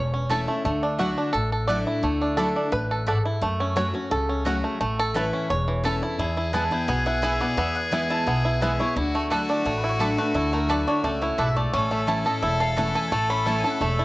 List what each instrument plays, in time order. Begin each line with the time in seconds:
Already playing: upright bass E1, steel-string acoustic guitar E2, five-string banjo E3 C#4 E4 C#5
0.14 five-string banjo C#4
0.29 steel-string acoustic guitar E3 A3 C#4 E4, mandolin A3 E4 C#5 A5, five-string banjo A4
0.47 five-string banjo A3, steel-string acoustic guitar C#4 E4
0.65 upright bass D2, steel-string acoustic guitar D3, five-string banjo A3
0.83 five-string banjo D4
0.98 steel-string acoustic guitar F#3 A3 D4 E4, mandolin A3 E4 D5 F#5, five-string banjo F#4
1.18 five-string banjo D4
1.33 upright bass A1, steel-string acoustic guitar A2, five-string banjo A4
1.52 five-string banjo A4
1.67 steel-string acoustic guitar F#3 A3 D4 E4, mandolin A3 E4 D5 F#5, five-string banjo D5
1.87 five-string banjo E4
2.03 upright bass D2, steel-string acoustic guitar D3, five-string banjo A3
2.21 five-string banjo D4
2.37 steel-string acoustic guitar F#3 A3 D4 E4, mandolin A3 E4 D5 F#5, five-string banjo A4
2.56 five-string banjo D4
2.72 upright bass A1, steel-string acoustic guitar A2, five-string banjo B4
2.91 five-string banjo A4
3.07 steel-string acoustic guitar G#2, mandolin A3 E4 D5 F#5, five-string banjo A4
3.25 five-string banjo E4
3.41 steel-string acoustic guitar F#2, upright bass F#2, five-string banjo A3
3.60 five-string banjo C#4
3.76 steel-string acoustic guitar F#3 A3 C#4 F#4, mandolin A3 F#4 C#5 F#5, five-string banjo C#5
3.93 five-string banjo C#4, steel-string acoustic guitar C#4 F#4
4.11 upright bass C#2, steel-string acoustic guitar C#3, five-string banjo A4
4.29 five-string banjo C#4
4.45 steel-string acoustic guitar F#3 A3 C#4 F#4, mandolin A3 F#4 C#5 F#5, five-string banjo F#4
4.64 five-string banjo A3
4.80 upright bass A1, steel-string acoustic guitar A2, five-string banjo A3
4.99 five-string banjo A4
5.14 steel-string acoustic guitar E3 A3 C#4 E4, mandolin A3 E4 C#5 A5, five-string banjo B4
5.33 five-string banjo C#4
5.50 upright bass E1, steel-string acoustic guitar E2, five-string banjo C#5
5.68 five-string banjo E3
5.84 steel-string acoustic guitar E3 A3 C#4 E4, mandolin A3 E4 C#5 A5, five-string banjo A4
6.02 steel-string acoustic guitar C#4 E4, five-string banjo E4
6.18 upright bass E2, steel-string acoustic guitar E2, five-string banjo E4, fiddle G#4
6.37 five-string banjo E4
6.53 steel-string acoustic guitar E3 G#3 B3 E4, mandolin B3 E4 B4 G#5 A5, five-string banjo E4
6.71 steel-string acoustic guitar B3 E4, five-string banjo E4, mandolin G5
6.88 upright bass B1, steel-string acoustic guitar B2, five-string banjo B3, mandolin G#5
7.06 five-string banjo E4, mandolin F#5
7.22 steel-string acoustic guitar E3 G#3 B3 E4, mandolin B3 E4 B4 E5 G#5, five-string banjo E4
7.40 five-string banjo B3, steel-string acoustic guitar B3 E4, mandolin D5
7.57 upright bass E2, steel-string acoustic guitar E2, five-string banjo B3, mandolin E5
7.75 mandolin F#5
7.91 steel-string acoustic guitar E3 G#3 B3 E4, mandolin B3 E4 B4 G#5, five-string banjo E4
8.10 five-string banjo E4, mandolin A5
8.26 upright bass B1, steel-string acoustic guitar B2, five-string banjo B3, mandolin G#5
8.45 five-string banjo E4
8.61 steel-string acoustic guitar E3 G#3 B3 E4, mandolin B3 E4 B4 E5 G#5, five-string banjo E4
8.79 steel-string acoustic guitar B3 E4, five-string banjo E4, mandolin C#5
8.96 upright bass D2, steel-string acoustic guitar D3, five-string banjo E4, fiddle F#4, mandolin D5
9.15 five-string banjo A3, mandolin F#4
9.30 steel-string acoustic guitar F#3 A3 D4 E4, mandolin A3 E4 A4 D5 F#5, fiddle F#4, five-string banjo A4
9.49 five-string banjo D4, mandolin D5
9.65 upright bass A1, steel-string acoustic guitar A2, five-string banjo A3, mandolin C#5
9.78 mandolin B4
9.84 five-string banjo E4
9.89 mandolin C#5
9.99 steel-string acoustic guitar F#3 A3 D4 E4, mandolin A3 E4 D5 F#5, five-string banjo A4
10.17 five-string banjo A3, steel-string acoustic guitar D4 E4, mandolin B4
10.34 upright bass D2, steel-string acoustic guitar D3, five-string banjo E4, mandolin A4
10.53 five-string banjo A3, mandolin A#4
10.69 steel-string acoustic guitar F#3 A3 D4 E4, mandolin A3 E4 B4 D5 F#5, five-string banjo A4
10.87 five-string banjo D4, steel-string acoustic guitar D4 E4, mandolin C#5
11.04 upright bass C#2, five-string banjo A3, steel-string acoustic guitar C#4, mandolin D5
11.22 five-string banjo E4, mandolin C#5
11.38 upright bass B1, steel-string acoustic guitar G#2, mandolin A3 E4 D5 E5 F#5, five-string banjo A4
11.57 five-string banjo A3, mandolin D5
11.73 upright bass A1, steel-string acoustic guitar A2, five-string banjo C#4, fiddle A4, mandolin C#5
11.91 five-string banjo A3, mandolin E5
12.07 steel-string acoustic guitar E3 A3 C#4 E4, mandolin A3 E4 C#5 A5, five-string banjo E4
12.25 steel-string acoustic guitar C#4 E4, five-string banjo A4, mandolin D#5
12.42 upright bass E1, steel-string acoustic guitar E2, five-string banjo E4, mandolin E5
12.60 five-string banjo A4, mandolin F5
12.77 steel-string acoustic guitar E3 A3 C#4 E4, mandolin A3 E4 C#5 F#5 A5, five-string banjo E4
12.95 five-string banjo A4, mandolin G#5
13.12 upright bass A1, steel-string acoustic guitar A2, five-string banjo A3, mandolin A5
13.30 five-string banjo C#4, mandolin B5
13.45 steel-string acoustic guitar E3 A3 C#4 E4, mandolin A3 E4 C#5 A5, five-string banjo E4
13.59 mandolin G#5
13.64 steel-string acoustic guitar C#4 E4, five-string banjo A4
13.70 mandolin F#5
13.81 upright bass E1, steel-string acoustic guitar E2, five-string banjo A3, mandolin E5
13.99 five-string banjo E4, mandolin D5